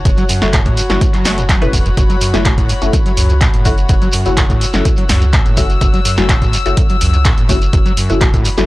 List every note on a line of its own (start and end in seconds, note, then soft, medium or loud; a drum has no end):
0.00 8.66 F#4 medium
0.00 8.66 C#5 medium
0.00 8.66 F#5 medium
0.00 0.88 A5 medium
0.05 0.14 F#1 loud
0.05 0.09 F#2 medium
0.05 kick loud
0.05 closed hi-hat medium
0.05 shekere medium
0.18 0.24 F#3 loud
0.18 closed hi-hat soft
0.18 shekere soft
0.29 0.43 F#2 medium
0.29 open hi-hat loud
0.29 shekere medium
0.42 0.72 F#1 medium
0.42 0.46 E2 medium
0.42 0.53 A3 loud
0.42 0.53 C#4 medium
0.42 0.53 E4 medium
0.42 0.53 F#4 loud
0.42 snare medium
0.42 closed hi-hat soft
0.42 shekere soft
0.53 0.60 A2 loud
0.53 kick loud
0.53 clap loud
0.53 closed hi-hat loud
0.53 shekere medium
0.65 0.79 A2 medium
0.65 kick medium
0.65 closed hi-hat soft
0.65 shekere soft
0.74 0.81 F#2 medium
0.74 4.60 B5 medium
0.74 open hi-hat loud
0.74 shekere medium
0.90 0.98 F#1 medium
0.90 1.01 A3 medium
0.90 1.01 C#4 medium
0.90 1.01 E4 medium
0.90 1.01 F#4 loud
0.90 snare medium
0.90 closed hi-hat soft
0.90 shekere soft
1.01 1.05 F#2 medium
1.01 kick loud
1.01 closed hi-hat loud
1.01 shekere medium
1.14 1.27 F#3 loud
1.14 clap soft
1.14 closed hi-hat soft
1.14 shekere soft
1.25 1.56 F#1 loud
1.25 1.39 A3 loud
1.25 snare medium
1.25 open hi-hat loud
1.25 shekere medium
1.38 1.44 F#2 medium
1.38 closed hi-hat soft
1.38 shekere soft
1.49 1.63 F#3 loud
1.49 kick loud
1.49 clap loud
1.49 closed hi-hat loud
1.49 shekere medium
1.62 1.92 E1 loud
1.62 1.68 A2 medium
1.62 1.73 A3 medium
1.62 1.73 C#4 medium
1.62 1.73 E4 medium
1.62 1.73 B4 loud
1.62 closed hi-hat soft
1.62 shekere soft
1.73 1.80 E2 medium
1.73 kick medium
1.73 open hi-hat medium
1.73 shekere medium
1.86 1.89 F#2 loud
1.86 closed hi-hat soft
1.86 shekere soft
1.97 2.06 F#1 loud
1.97 2.01 F#2 medium
1.97 kick loud
1.97 closed hi-hat loud
1.97 shekere medium
2.10 2.16 F#3 loud
2.10 closed hi-hat soft
2.10 shekere soft
2.21 2.35 F#2 medium
2.21 open hi-hat loud
2.21 shekere medium
2.34 2.64 F#1 medium
2.34 2.37 E2 medium
2.34 2.45 A3 medium
2.34 2.45 C#4 medium
2.34 2.45 E4 medium
2.34 2.45 F#4 loud
2.34 snare medium
2.34 closed hi-hat soft
2.34 shekere soft
2.45 2.52 A2 loud
2.45 kick loud
2.45 clap loud
2.45 closed hi-hat loud
2.45 shekere medium
2.58 2.71 A2 medium
2.58 kick medium
2.58 closed hi-hat soft
2.58 shekere soft
2.69 2.73 F#2 medium
2.69 open hi-hat loud
2.69 shekere medium
2.82 2.90 F#1 medium
2.82 2.93 A3 medium
2.82 2.93 C#4 medium
2.82 2.93 E4 medium
2.82 2.93 F#4 loud
2.82 closed hi-hat soft
2.82 shekere soft
2.93 2.97 F#2 medium
2.93 kick loud
2.93 closed hi-hat loud
2.93 shekere medium
3.06 3.12 F#3 loud
3.06 closed hi-hat soft
3.06 shekere soft
3.17 3.48 C#2 medium
3.17 3.31 F#2 medium
3.17 open hi-hat loud
3.17 shekere medium
3.29 3.34 E2 medium
3.29 closed hi-hat soft
3.29 shekere soft
3.41 3.48 A2 loud
3.41 kick loud
3.41 clap loud
3.41 closed hi-hat medium
3.41 shekere medium
3.54 3.84 F#1 loud
3.54 3.67 A2 medium
3.54 closed hi-hat soft
3.54 shekere soft
3.65 3.69 F#2 medium
3.65 3.73 A3 medium
3.65 3.73 C#4 medium
3.65 3.73 E4 medium
3.65 3.73 F#4 medium
3.65 kick medium
3.65 open hi-hat medium
3.65 shekere medium
3.78 closed hi-hat soft
3.78 shekere soft
3.89 3.98 F#1 loud
3.89 3.93 F#2 medium
3.89 kick loud
3.89 closed hi-hat loud
3.89 shekere soft
4.02 4.08 F#3 loud
4.02 closed hi-hat soft
4.02 shekere soft
4.12 4.27 F#2 medium
4.12 open hi-hat loud
4.12 shekere loud
4.26 4.56 F#1 medium
4.26 4.30 E2 medium
4.26 4.37 A3 medium
4.26 4.37 C#4 medium
4.26 4.37 E4 medium
4.26 4.37 F#4 loud
4.26 closed hi-hat soft
4.26 shekere soft
4.37 4.44 A2 loud
4.37 kick loud
4.37 clap loud
4.37 closed hi-hat loud
4.37 shekere medium
4.50 4.63 A2 medium
4.50 kick medium
4.50 closed hi-hat soft
4.50 shekere soft
4.58 4.65 F#2 medium
4.58 8.44 E6 medium
4.58 open hi-hat loud
4.62 shekere medium
4.73 4.82 F#1 medium
4.73 4.85 A3 medium
4.73 4.85 C#4 medium
4.73 4.85 E4 medium
4.73 4.85 F#4 loud
4.73 snare medium
4.73 closed hi-hat soft
4.73 shekere soft
4.85 4.89 F#2 medium
4.85 kick loud
4.85 closed hi-hat loud
4.85 shekere medium
4.96 5.04 F#3 loud
4.96 closed hi-hat soft
4.96 shekere soft
5.09 5.40 C#2 medium
5.09 5.23 F#2 medium
5.09 snare medium
5.09 open hi-hat loud
5.09 shekere loud
5.21 5.26 E2 medium
5.21 closed hi-hat soft
5.21 shekere soft
5.33 5.40 A2 loud
5.33 kick loud
5.33 clap loud
5.33 closed hi-hat medium
5.33 shekere medium
5.46 5.76 F#1 loud
5.46 5.59 A2 medium
5.46 closed hi-hat soft
5.46 shekere soft
5.57 5.61 F#2 medium
5.57 5.65 A3 medium
5.57 5.65 C#4 medium
5.57 5.65 E4 medium
5.57 5.65 F#4 medium
5.57 kick medium
5.57 open hi-hat loud
5.57 shekere loud
5.70 closed hi-hat soft
5.70 shekere soft
5.81 5.90 F#1 loud
5.81 5.85 F#2 medium
5.81 kick loud
5.81 closed hi-hat medium
5.81 shekere medium
5.94 6.00 F#3 loud
5.94 closed hi-hat soft
5.94 shekere soft
6.05 6.19 F#2 medium
6.05 open hi-hat loud
6.05 shekere loud
6.17 6.48 F#1 loud
6.17 6.22 E2 medium
6.17 6.29 A3 medium
6.17 6.29 C#4 medium
6.17 6.29 E4 medium
6.17 6.29 F#4 loud
6.17 snare medium
6.17 closed hi-hat soft
6.17 shekere soft
6.29 6.36 A2 loud
6.29 kick loud
6.29 clap loud
6.29 closed hi-hat medium
6.29 shekere medium
6.42 6.55 A2 medium
6.42 kick medium
6.42 closed hi-hat soft
6.42 shekere soft
6.53 6.57 F#2 medium
6.53 open hi-hat loud
6.53 shekere medium
6.66 6.74 F#1 medium
6.66 6.77 A3 medium
6.66 6.77 C#4 medium
6.66 6.77 E4 medium
6.66 6.77 F#4 loud
6.66 closed hi-hat soft
6.66 shekere soft
6.77 6.81 F#2 medium
6.77 kick loud
6.77 closed hi-hat medium
6.77 shekere medium
6.89 6.96 F#3 loud
6.89 closed hi-hat soft
6.89 shekere soft
7.01 7.32 C#2 medium
7.01 7.15 F#2 medium
7.01 open hi-hat loud
7.01 shekere loud
7.13 7.18 E2 medium
7.13 closed hi-hat soft
7.13 shekere soft
7.25 7.32 A2 loud
7.25 kick loud
7.25 clap loud
7.25 closed hi-hat medium
7.25 shekere medium
7.38 7.68 F#1 loud
7.38 7.51 A2 medium
7.38 closed hi-hat soft
7.38 shekere soft
7.49 7.53 F#2 medium
7.49 7.57 A3 medium
7.49 7.57 C#4 medium
7.49 7.57 E4 medium
7.49 7.57 F#4 medium
7.49 kick medium
7.49 open hi-hat loud
7.49 shekere medium
7.62 closed hi-hat soft
7.62 shekere soft
7.73 7.82 F#1 loud
7.73 7.77 F#2 medium
7.73 kick loud
7.73 closed hi-hat medium
7.73 shekere soft
7.86 7.92 F#3 loud
7.86 closed hi-hat soft
7.86 shekere soft
7.97 8.11 F#2 medium
7.97 open hi-hat loud
7.97 shekere medium
8.10 8.40 F#1 loud
8.10 8.14 E2 medium
8.10 8.21 A3 medium
8.10 8.21 C#4 medium
8.10 8.21 E4 medium
8.10 8.21 F#4 loud
8.10 closed hi-hat soft
8.10 shekere soft
8.21 8.28 A2 loud
8.21 kick loud
8.21 clap loud
8.21 closed hi-hat medium
8.21 shekere medium
8.34 8.47 A2 medium
8.34 kick medium
8.34 closed hi-hat soft
8.34 shekere soft
8.42 8.49 F#2 medium
8.42 8.66 B5 medium
8.42 open hi-hat loud
8.42 shekere medium
8.57 8.66 F#1 medium
8.57 8.66 A3 medium
8.57 8.66 C#4 medium
8.57 8.66 E4 medium
8.57 8.66 F#4 loud
8.57 snare medium
8.57 closed hi-hat soft
8.57 shekere soft